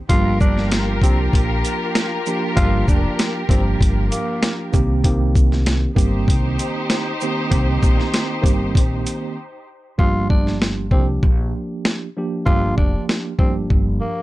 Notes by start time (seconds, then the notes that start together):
0.09 G1 F3 A#3 D4 F4 G4 A#4, kick, closed hi-hat
0.41 D4, kick, shaker
0.58 snare
0.72 snare, closed hi-hat
1.02 C2 F3 A#3 C4 D4 G4, kick, closed hi-hat, shaker
1.33 A#1, kick, closed hi-hat
1.65 closed hi-hat, shaker
1.95 snare, closed hi-hat
2.26 F3 A#3 D4 G4, shaker
2.55 G1 F3 A#3 D4 F4 G4, kick, closed hi-hat
2.88 F1 D4, kick, shaker
3.19 snare, closed hi-hat
3.48 G1 F3 A#3 C4 D4 G4, kick, closed hi-hat, shaker
3.81 G1, kick, closed hi-hat
4.11 A#3, closed hi-hat, shaker
4.43 snare, closed hi-hat
4.72 C2 D#3 A#3 C4 G4, kick, shaker
5.04 D#3 A#3 C4 G4, kick, closed hi-hat
5.35 kick, shaker
5.52 snare
5.66 snare, closed hi-hat
5.95 G1 D#3 A#3 C4 D#4 G4 C5, kick, closed hi-hat, shaker
6.28 C2, kick, closed hi-hat
6.59 closed hi-hat, shaker
6.90 snare, closed hi-hat
7.21 D#3 A#3 C4 G4, shaker
7.50 C2 D#3 A#3 C4 G4, kick, closed hi-hat
7.83 A#1, kick, shaker
8.00 snare
8.14 snare, closed hi-hat
8.41 G1 D#3 A#3 C4 G4, kick
8.46 closed hi-hat, shaker
8.75 A#1, kick, closed hi-hat
9.07 closed hi-hat, shaker
9.98 G1 F3 A#3 D4 F4 G4, kick
10.30 D4, kick
10.47 snare
10.62 snare
10.91 C2 F3 A#3 C4 D4 G4, kick
11.23 A#1, kick
11.85 snare
12.16 F3 A#3 D4 G4
12.45 G1 F3 A#3 D4 F4 G4, kick
12.77 F1 D4, kick
13.09 snare
13.38 G1 F3 A#3 C4 D4 G4, kick
13.70 G1, kick
14.01 A#3